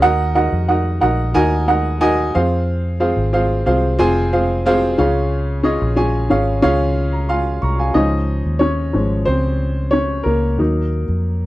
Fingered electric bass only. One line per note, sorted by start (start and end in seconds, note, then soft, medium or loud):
0.03 0.49 D#2 loud
0.53 0.99 F2 medium
1.02 1.33 A#1 medium
1.36 2.30 D#2 medium
2.36 3.13 F2 loud
3.17 3.63 G#1 medium
3.67 3.97 C2 medium
3.99 4.94 F1 loud
4.99 5.77 C#2 medium
5.82 6.27 A#1 medium
6.31 6.61 G#1 medium
6.64 7.58 C#2 loud
7.63 7.93 C2 medium
7.95 8.41 C#2 medium
8.45 8.91 D#2 medium
8.94 9.25 G#1 medium
9.27 10.22 C#2 loud
10.26 10.57 C#2 medium
10.59 11.05 D#2 loud
11.09 11.46 F2 medium